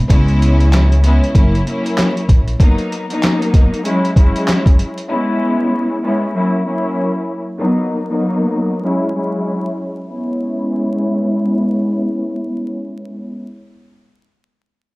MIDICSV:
0, 0, Header, 1, 4, 480
1, 0, Start_track
1, 0, Tempo, 625000
1, 74, Time_signature, 4, 2, 24, 8
1, 11485, End_track
2, 0, Start_track
2, 0, Title_t, "String section"
2, 0, Program_c, 0, 48
2, 58, Note_on_c, 0, 56, 103
2, 66, Note_on_c, 0, 59, 88
2, 73, Note_on_c, 0, 61, 92
2, 79, Note_on_c, 0, 64, 115
2, 740, Note_off_c, 0, 56, 0
2, 743, Note_off_c, 0, 59, 0
2, 747, Note_off_c, 0, 61, 0
2, 750, Note_off_c, 0, 64, 0
2, 781, Note_on_c, 0, 56, 95
2, 789, Note_on_c, 0, 59, 92
2, 796, Note_on_c, 0, 61, 81
2, 804, Note_on_c, 0, 64, 97
2, 1028, Note_off_c, 0, 56, 0
2, 1032, Note_off_c, 0, 59, 0
2, 1034, Note_on_c, 0, 54, 93
2, 1035, Note_off_c, 0, 61, 0
2, 1039, Note_off_c, 0, 64, 0
2, 1041, Note_on_c, 0, 58, 82
2, 1049, Note_on_c, 0, 61, 81
2, 1055, Note_on_c, 0, 64, 101
2, 1257, Note_off_c, 0, 54, 0
2, 1262, Note_off_c, 0, 58, 0
2, 1266, Note_off_c, 0, 61, 0
2, 1266, Note_on_c, 0, 54, 89
2, 1269, Note_off_c, 0, 64, 0
2, 1273, Note_on_c, 0, 58, 84
2, 1279, Note_on_c, 0, 61, 83
2, 1288, Note_on_c, 0, 64, 98
2, 1836, Note_off_c, 0, 54, 0
2, 1840, Note_off_c, 0, 58, 0
2, 1843, Note_off_c, 0, 61, 0
2, 1847, Note_off_c, 0, 64, 0
2, 1983, Note_on_c, 0, 54, 96
2, 1990, Note_on_c, 0, 58, 83
2, 1996, Note_on_c, 0, 59, 91
2, 2004, Note_on_c, 0, 63, 105
2, 2337, Note_off_c, 0, 54, 0
2, 2341, Note_off_c, 0, 58, 0
2, 2344, Note_off_c, 0, 59, 0
2, 2348, Note_off_c, 0, 63, 0
2, 2368, Note_on_c, 0, 54, 95
2, 2375, Note_on_c, 0, 58, 98
2, 2383, Note_on_c, 0, 59, 88
2, 2390, Note_on_c, 0, 63, 100
2, 2932, Note_off_c, 0, 54, 0
2, 2941, Note_on_c, 0, 54, 98
2, 2947, Note_on_c, 0, 56, 89
2, 2953, Note_off_c, 0, 58, 0
2, 2954, Note_on_c, 0, 61, 86
2, 2957, Note_off_c, 0, 59, 0
2, 2960, Note_off_c, 0, 63, 0
2, 2962, Note_on_c, 0, 64, 101
2, 3172, Note_off_c, 0, 54, 0
2, 3175, Note_off_c, 0, 56, 0
2, 3179, Note_off_c, 0, 61, 0
2, 3182, Note_off_c, 0, 64, 0
2, 3188, Note_on_c, 0, 54, 95
2, 3194, Note_on_c, 0, 56, 92
2, 3201, Note_on_c, 0, 61, 85
2, 3209, Note_on_c, 0, 64, 105
2, 3757, Note_off_c, 0, 54, 0
2, 3760, Note_off_c, 0, 56, 0
2, 3764, Note_off_c, 0, 61, 0
2, 3767, Note_off_c, 0, 64, 0
2, 3898, Note_on_c, 0, 56, 99
2, 3905, Note_on_c, 0, 59, 90
2, 3912, Note_on_c, 0, 61, 88
2, 3919, Note_on_c, 0, 64, 111
2, 4580, Note_off_c, 0, 56, 0
2, 4583, Note_off_c, 0, 59, 0
2, 4587, Note_off_c, 0, 61, 0
2, 4590, Note_off_c, 0, 64, 0
2, 4623, Note_on_c, 0, 56, 91
2, 4629, Note_on_c, 0, 59, 91
2, 4637, Note_on_c, 0, 61, 82
2, 4643, Note_on_c, 0, 64, 92
2, 4868, Note_off_c, 0, 56, 0
2, 4871, Note_off_c, 0, 59, 0
2, 4873, Note_on_c, 0, 54, 95
2, 4875, Note_off_c, 0, 61, 0
2, 4879, Note_off_c, 0, 64, 0
2, 4880, Note_on_c, 0, 58, 84
2, 4888, Note_on_c, 0, 61, 79
2, 4895, Note_on_c, 0, 64, 106
2, 5096, Note_off_c, 0, 54, 0
2, 5101, Note_off_c, 0, 58, 0
2, 5105, Note_off_c, 0, 61, 0
2, 5105, Note_on_c, 0, 54, 89
2, 5109, Note_off_c, 0, 64, 0
2, 5113, Note_on_c, 0, 58, 83
2, 5120, Note_on_c, 0, 61, 86
2, 5126, Note_on_c, 0, 64, 100
2, 5675, Note_off_c, 0, 54, 0
2, 5679, Note_off_c, 0, 58, 0
2, 5683, Note_off_c, 0, 61, 0
2, 5686, Note_off_c, 0, 64, 0
2, 5821, Note_on_c, 0, 54, 98
2, 5828, Note_on_c, 0, 58, 85
2, 5834, Note_on_c, 0, 59, 89
2, 5842, Note_on_c, 0, 63, 104
2, 6176, Note_off_c, 0, 54, 0
2, 6180, Note_off_c, 0, 58, 0
2, 6183, Note_off_c, 0, 59, 0
2, 6187, Note_off_c, 0, 63, 0
2, 6206, Note_on_c, 0, 54, 99
2, 6214, Note_on_c, 0, 58, 96
2, 6221, Note_on_c, 0, 59, 88
2, 6227, Note_on_c, 0, 63, 104
2, 6769, Note_off_c, 0, 54, 0
2, 6778, Note_on_c, 0, 54, 96
2, 6784, Note_on_c, 0, 56, 84
2, 6792, Note_off_c, 0, 58, 0
2, 6792, Note_on_c, 0, 61, 84
2, 6795, Note_off_c, 0, 59, 0
2, 6799, Note_off_c, 0, 63, 0
2, 6799, Note_on_c, 0, 64, 104
2, 7010, Note_off_c, 0, 54, 0
2, 7014, Note_off_c, 0, 56, 0
2, 7017, Note_off_c, 0, 61, 0
2, 7021, Note_off_c, 0, 64, 0
2, 7024, Note_on_c, 0, 54, 92
2, 7032, Note_on_c, 0, 56, 89
2, 7038, Note_on_c, 0, 61, 83
2, 7045, Note_on_c, 0, 64, 103
2, 7595, Note_off_c, 0, 54, 0
2, 7599, Note_off_c, 0, 56, 0
2, 7602, Note_off_c, 0, 61, 0
2, 7605, Note_off_c, 0, 64, 0
2, 7748, Note_on_c, 0, 56, 94
2, 7750, Note_on_c, 0, 59, 85
2, 7753, Note_on_c, 0, 61, 87
2, 7755, Note_on_c, 0, 64, 105
2, 10255, Note_off_c, 0, 56, 0
2, 10256, Note_off_c, 0, 59, 0
2, 10257, Note_off_c, 0, 61, 0
2, 10258, Note_off_c, 0, 64, 0
2, 11485, End_track
3, 0, Start_track
3, 0, Title_t, "Upright bass"
3, 0, Program_c, 1, 32
3, 76, Note_on_c, 1, 37, 113
3, 908, Note_off_c, 1, 37, 0
3, 1037, Note_on_c, 1, 30, 98
3, 1222, Note_off_c, 1, 30, 0
3, 1759, Note_on_c, 1, 34, 84
3, 1943, Note_off_c, 1, 34, 0
3, 11485, End_track
4, 0, Start_track
4, 0, Title_t, "Drums"
4, 74, Note_on_c, 9, 36, 112
4, 79, Note_on_c, 9, 42, 111
4, 151, Note_off_c, 9, 36, 0
4, 155, Note_off_c, 9, 42, 0
4, 218, Note_on_c, 9, 42, 50
4, 295, Note_off_c, 9, 42, 0
4, 325, Note_on_c, 9, 42, 78
4, 401, Note_off_c, 9, 42, 0
4, 464, Note_on_c, 9, 42, 57
4, 541, Note_off_c, 9, 42, 0
4, 560, Note_on_c, 9, 42, 97
4, 561, Note_on_c, 9, 39, 90
4, 565, Note_on_c, 9, 38, 120
4, 637, Note_off_c, 9, 42, 0
4, 638, Note_off_c, 9, 39, 0
4, 642, Note_off_c, 9, 38, 0
4, 707, Note_on_c, 9, 42, 62
4, 784, Note_off_c, 9, 42, 0
4, 796, Note_on_c, 9, 42, 84
4, 873, Note_off_c, 9, 42, 0
4, 949, Note_on_c, 9, 42, 51
4, 1026, Note_off_c, 9, 42, 0
4, 1035, Note_on_c, 9, 36, 98
4, 1038, Note_on_c, 9, 42, 89
4, 1112, Note_off_c, 9, 36, 0
4, 1115, Note_off_c, 9, 42, 0
4, 1190, Note_on_c, 9, 42, 53
4, 1267, Note_off_c, 9, 42, 0
4, 1283, Note_on_c, 9, 42, 73
4, 1359, Note_off_c, 9, 42, 0
4, 1428, Note_on_c, 9, 42, 62
4, 1505, Note_off_c, 9, 42, 0
4, 1520, Note_on_c, 9, 39, 95
4, 1524, Note_on_c, 9, 38, 119
4, 1527, Note_on_c, 9, 42, 89
4, 1597, Note_off_c, 9, 39, 0
4, 1601, Note_off_c, 9, 38, 0
4, 1603, Note_off_c, 9, 42, 0
4, 1667, Note_on_c, 9, 42, 53
4, 1744, Note_off_c, 9, 42, 0
4, 1757, Note_on_c, 9, 36, 86
4, 1760, Note_on_c, 9, 42, 72
4, 1834, Note_off_c, 9, 36, 0
4, 1837, Note_off_c, 9, 42, 0
4, 1901, Note_on_c, 9, 42, 52
4, 1978, Note_off_c, 9, 42, 0
4, 1995, Note_on_c, 9, 36, 113
4, 1999, Note_on_c, 9, 42, 107
4, 2072, Note_off_c, 9, 36, 0
4, 2076, Note_off_c, 9, 42, 0
4, 2138, Note_on_c, 9, 42, 51
4, 2215, Note_off_c, 9, 42, 0
4, 2245, Note_on_c, 9, 42, 77
4, 2322, Note_off_c, 9, 42, 0
4, 2383, Note_on_c, 9, 42, 56
4, 2460, Note_off_c, 9, 42, 0
4, 2480, Note_on_c, 9, 42, 95
4, 2481, Note_on_c, 9, 39, 93
4, 2485, Note_on_c, 9, 38, 119
4, 2556, Note_off_c, 9, 42, 0
4, 2558, Note_off_c, 9, 39, 0
4, 2562, Note_off_c, 9, 38, 0
4, 2627, Note_on_c, 9, 42, 62
4, 2704, Note_off_c, 9, 42, 0
4, 2717, Note_on_c, 9, 36, 84
4, 2717, Note_on_c, 9, 42, 86
4, 2721, Note_on_c, 9, 38, 35
4, 2793, Note_off_c, 9, 36, 0
4, 2794, Note_off_c, 9, 42, 0
4, 2798, Note_off_c, 9, 38, 0
4, 2870, Note_on_c, 9, 42, 54
4, 2947, Note_off_c, 9, 42, 0
4, 2958, Note_on_c, 9, 42, 92
4, 3035, Note_off_c, 9, 42, 0
4, 3109, Note_on_c, 9, 42, 51
4, 3185, Note_off_c, 9, 42, 0
4, 3197, Note_on_c, 9, 36, 104
4, 3201, Note_on_c, 9, 42, 73
4, 3273, Note_off_c, 9, 36, 0
4, 3278, Note_off_c, 9, 42, 0
4, 3347, Note_on_c, 9, 42, 59
4, 3424, Note_off_c, 9, 42, 0
4, 3440, Note_on_c, 9, 39, 94
4, 3444, Note_on_c, 9, 38, 120
4, 3447, Note_on_c, 9, 42, 88
4, 3517, Note_off_c, 9, 39, 0
4, 3521, Note_off_c, 9, 38, 0
4, 3523, Note_off_c, 9, 42, 0
4, 3578, Note_on_c, 9, 36, 97
4, 3586, Note_on_c, 9, 42, 51
4, 3655, Note_off_c, 9, 36, 0
4, 3663, Note_off_c, 9, 42, 0
4, 3680, Note_on_c, 9, 42, 74
4, 3757, Note_off_c, 9, 42, 0
4, 3822, Note_on_c, 9, 42, 50
4, 3899, Note_off_c, 9, 42, 0
4, 11485, End_track
0, 0, End_of_file